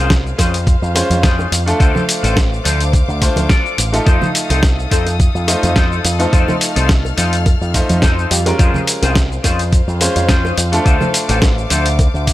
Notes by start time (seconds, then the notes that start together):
Already playing: C2 G#3 C#4 F4 G#4 A#4 C5 F5
0.10 kick, snare, closed hi-hat, cabasa
0.25 muted clean electric guitar stroke, cabasa
0.38 F2 C#4 F4 G#4 C5, kick, open hi-hat, high bongo, high conga, cabasa
0.54 closed hi-hat, cabasa
0.66 muted clean electric guitar stroke, kick, closed hi-hat, cabasa
0.82 F2, cabasa
0.95 G#3 C#4 F4 C5, open hi-hat, high bongo, cabasa
1.10 F2, closed hi-hat, high conga, cabasa
1.23 C#4 F4 G#4 C5, kick, snare, closed hi-hat, cabasa
1.39 high bongo, cabasa
1.52 F2, open hi-hat, cabasa
1.66 A3 D4 F4 A4, closed hi-hat, cabasa
1.79 D2 D4 F4 A4 C5 D6, kick, closed hi-hat, cabasa
1.95 high bongo, high conga, low conga, cabasa
2.09 open hi-hat, cabasa
2.23 A1 D4 F4 A4 C5, closed hi-hat, cabasa
2.36 kick, snare, closed hi-hat, high bongo, cabasa
2.51 muted clean electric guitar stroke, cabasa
2.64 D2 D4 F4 A4 C5, open hi-hat, high conga, cabasa
2.81 closed hi-hat, cabasa
2.93 muted clean electric guitar stroke, kick, closed hi-hat, high bongo, cabasa
3.08 D2, cabasa
3.21 A3 D4 F4 C5, kick, open hi-hat, cabasa
3.36 D2, closed hi-hat, high bongo, high conga, cabasa
3.49 D4 F4 A4 D5, kick, snare, closed hi-hat, cabasa
3.66 cabasa
3.78 A1, open hi-hat, cabasa
3.92 A3 D#4 F4 A4, closed hi-hat, high bongo, cabasa
4.06 F2 D#4 F4 A4 C5 D#6, kick, closed hi-hat, high bongo, cabasa
4.21 high conga, low conga, cabasa
4.35 open hi-hat, cabasa
4.49 C2 D#4 F4 A4 C5, closed hi-hat, high bongo, cabasa
4.63 kick, snare, closed hi-hat, cabasa
4.77 muted clean electric guitar stroke, cabasa
4.91 F2 D#4 F4 A4 C5, kick, open hi-hat, high conga, cabasa
5.06 closed hi-hat, high bongo, cabasa
5.19 muted clean electric guitar stroke, kick, closed hi-hat, cabasa
5.35 F2, cabasa
5.48 A3 D#4 F4 C5, open hi-hat, high bongo, cabasa
5.63 F2, closed hi-hat, high conga, cabasa
5.76 D#4 F4 A4 C5, kick, snare, closed hi-hat, cabasa
5.92 cabasa
6.05 F2, open hi-hat, high bongo, cabasa
6.19 A3 D#4 F4 A4 C5, closed hi-hat, cabasa
6.32 F2 D#4 F4 A4 C5 F6, kick, closed hi-hat, cabasa
6.48 high bongo, high conga, low conga, cabasa
6.61 open hi-hat, cabasa
6.76 C2 D#4 F4 A4 C5, closed hi-hat, cabasa
6.89 kick, snare, closed hi-hat, cabasa
7.04 muted clean electric guitar stroke, high bongo, cabasa
7.17 F2 D#4 F4 A4 C5, open hi-hat, high conga, cabasa
7.33 closed hi-hat, cabasa
7.46 muted clean electric guitar stroke, kick, closed hi-hat, high bongo, cabasa
7.61 F2, cabasa
7.74 A3 D#4 F4 C5, kick, open hi-hat, cabasa
7.89 F2, closed hi-hat, high conga, cabasa
8.02 D#4 F4 A4 C5, kick, snare, closed hi-hat, high bongo, cabasa
8.19 cabasa
8.31 F2 G4, open hi-hat, cabasa
8.45 G#3 C#4 F4 G4 A#4, closed hi-hat, high bongo, cabasa
8.58 F2 C#4 F4 G#4 C5 F5, kick, closed hi-hat, cabasa
8.74 high conga, low conga, cabasa
8.87 open hi-hat, cabasa
9.02 C2 C#4 F4 G#4 C5, closed hi-hat, high bongo, cabasa
9.15 kick, snare, closed hi-hat, cabasa
9.30 muted clean electric guitar stroke, cabasa
9.43 F2 C#4 F4 G#4 C5, kick, open hi-hat, high bongo, high conga, cabasa
9.59 closed hi-hat, cabasa
9.72 muted clean electric guitar stroke, kick, closed hi-hat, cabasa
9.88 F2, cabasa
10.01 G#3 C#4 F4 C5, open hi-hat, high bongo, cabasa
10.16 F2, closed hi-hat, high conga, cabasa
10.28 C#4 F4 G#4 C5, kick, snare, closed hi-hat, cabasa
10.45 high bongo, cabasa
10.58 F2, open hi-hat, cabasa
10.72 A3 D4 F4 A4, closed hi-hat, cabasa
10.85 D2 D4 F4 A4 C5 D6, kick, closed hi-hat, cabasa
11.01 high bongo, high conga, low conga, cabasa
11.14 open hi-hat, cabasa
11.28 A1 D4 F4 A4 C5, closed hi-hat, cabasa
11.42 kick, snare, closed hi-hat, high bongo, cabasa
11.57 muted clean electric guitar stroke, cabasa
11.70 D2 D4 F4 A4 C5, open hi-hat, high conga, cabasa
11.86 closed hi-hat, cabasa
11.98 muted clean electric guitar stroke, kick, closed hi-hat, high bongo, cabasa
12.14 D2, cabasa
12.27 kick, open hi-hat, cabasa